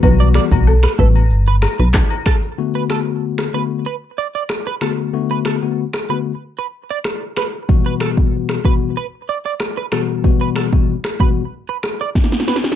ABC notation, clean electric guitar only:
X:1
M:4/4
L:1/16
Q:1/4=94
K:Bm
V:1 name="Clean electric guitar"
z d d z2 B A z2 B z B z2 A z | z B A z3 B z B z d d z B A z | z B A z3 B z2 B z d z2 B z | z B A z3 B z B z d d z B A z |
z B A z3 B z2 B z d z2 B z |]